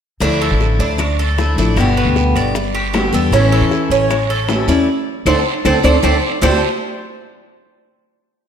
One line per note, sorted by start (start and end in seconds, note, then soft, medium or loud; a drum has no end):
0.20 0.49 D2 medium
0.20 0.97 D3 medium
0.20 0.98 F3 medium
0.20 0.98 A3 medium
0.20 0.40 D4 medium
0.20 0.99 D4 medium
0.20 0.98 E4 medium
0.20 high bongo medium
0.20 high timbale medium
0.20 long guiro medium
0.41 0.79 A4 medium
0.41 high bongo soft
0.41 high timbale medium
0.41 claves medium
0.50 0.78 A1 medium
0.60 high bongo soft
0.60 short guiro soft
0.79 1.53 D2 medium
0.79 1.18 D4 medium
0.79 high bongo soft
0.79 short guiro medium
0.98 muted steel-string acoustic guitar stroke medium
0.98 high bongo medium
0.98 high timbale medium
0.98 long guiro medium
0.98 claves medium
1.19 1.57 A4 medium
1.19 high timbale medium
1.38 1.57 F3 soft
1.38 1.57 A3 soft
1.38 1.58 D4 medium
1.38 1.57 E4 medium
1.38 high bongo medium
1.38 low bongo medium
1.38 short guiro medium
1.56 1.75 A1 medium
1.56 1.77 F3 soft
1.56 1.77 A3 medium
1.56 1.77 D4 medium
1.56 1.76 E4 medium
1.56 1.96 D5 medium
1.56 high bongo soft
1.56 short guiro medium
1.76 2.04 G1 medium
1.76 2.54 B2 medium
1.76 2.54 D3 medium
1.76 2.55 G3 medium
1.76 2.55 B3 medium
1.76 high bongo medium
1.76 high timbale medium
1.76 long guiro medium
1.76 claves medium
1.80 2.55 G4 medium
1.97 2.35 B4 medium
1.97 high timbale medium
2.05 2.33 D2 medium
2.16 high bongo medium
2.16 short guiro medium
2.35 3.09 G1 medium
2.35 2.74 D5 medium
2.35 high bongo soft
2.35 high timbale medium
2.35 short guiro medium
2.35 claves medium
2.55 muted steel-string acoustic guitar stroke medium
2.55 high bongo medium
2.55 long guiro medium
2.74 3.12 G4 medium
2.74 high bongo soft
2.74 high timbale medium
2.93 3.12 D3 medium
2.93 3.13 G3 soft
2.93 3.12 B3 medium
2.93 3.11 G4 medium
2.93 high bongo medium
2.93 low bongo medium
2.93 high timbale medium
2.93 low timbale medium
2.93 short guiro medium
2.93 claves medium
3.12 3.31 E2 medium
3.12 3.32 D3 medium
3.12 3.32 G3 medium
3.12 3.32 B3 medium
3.12 3.31 G4 medium
3.12 3.33 A4 medium
3.12 high bongo soft
3.12 short guiro medium
3.32 3.60 A1 medium
3.32 4.09 E3 medium
3.32 4.10 A3 medium
3.32 3.52 C#4 medium
3.32 4.10 C#4 medium
3.32 high bongo medium
3.32 high timbale medium
3.32 long guiro medium
3.36 4.10 E4 medium
3.52 3.90 A4 medium
3.52 high bongo soft
3.52 high timbale medium
3.52 claves medium
3.61 3.89 E2 medium
3.71 high bongo medium
3.71 short guiro medium
3.90 4.64 A1 medium
3.90 4.29 C#4 medium
3.90 high bongo soft
3.90 short guiro medium
4.10 muted steel-string acoustic guitar stroke medium
4.10 high bongo medium
4.10 high timbale medium
4.10 long guiro medium
4.10 claves medium
4.30 4.67 A4 medium
4.30 high timbale medium
4.48 4.67 E3 soft
4.48 4.68 A3 medium
4.48 4.68 C#4 medium
4.48 4.67 E4 medium
4.48 high bongo medium
4.48 low bongo medium
4.48 low timbale medium
4.48 short guiro medium
4.67 4.86 E2 medium
4.67 4.88 A3 soft
4.67 4.87 C#4 medium
4.67 4.87 E4 medium
4.67 4.87 D5 medium
4.67 high bongo soft
4.67 short guiro medium
5.25 5.40 D2 medium
5.25 5.39 A3 medium
5.25 5.39 C4 medium
5.25 5.39 D4 medium
5.25 5.39 A4 medium
5.25 5.39 C5 medium
5.25 5.39 D5 medium
5.25 low bongo medium
5.25 high timbale loud
5.25 long guiro medium
5.25 claves loud
5.65 5.80 D2 medium
5.65 5.78 A3 medium
5.65 5.78 C4 medium
5.65 5.78 D4 medium
5.65 5.78 A4 medium
5.65 5.78 C5 medium
5.65 5.78 D5 medium
5.65 low bongo loud
5.65 high timbale medium
5.65 long guiro medium
5.65 claves medium
5.83 5.99 D2 medium
5.83 5.97 A3 medium
5.83 5.97 C4 medium
5.83 5.97 D4 medium
5.83 5.97 A4 medium
5.83 5.97 C5 medium
5.83 5.97 D5 medium
5.83 low bongo medium
5.83 high timbale medium
5.83 long guiro medium
5.83 claves loud
6.03 6.18 D2 medium
6.03 6.16 A3 medium
6.03 6.16 C4 medium
6.03 6.16 D4 medium
6.03 6.16 A4 medium
6.03 6.16 C5 medium
6.03 6.16 D5 medium
6.03 low bongo loud
6.03 high timbale medium
6.03 long guiro medium
6.03 claves medium
6.41 6.61 D2 medium
6.41 6.58 D3 medium
6.41 6.58 A3 medium
6.41 6.59 C4 medium
6.41 6.61 D4 medium
6.41 6.59 F4 medium
6.41 6.61 A4 medium
6.41 6.61 C5 loud
6.41 low bongo medium
6.41 low timbale loud
6.41 long guiro medium
6.41 claves loud